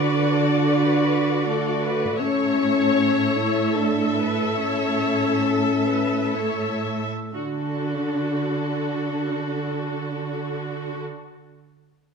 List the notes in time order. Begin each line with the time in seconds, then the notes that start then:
Already playing: D3 D4 F#4 B4 D5
0.33 A4
0.70 B4
1.46 A3 A4
1.83 B4
2.20 A2 C#4 A4 C#5 E5
3.37 E4
3.76 D4 A4
4.17 B4
4.58 C#4 C#5
5.43 A4
5.88 B4
6.36 A3 C#5
7.35 D3 D4 F#4 A4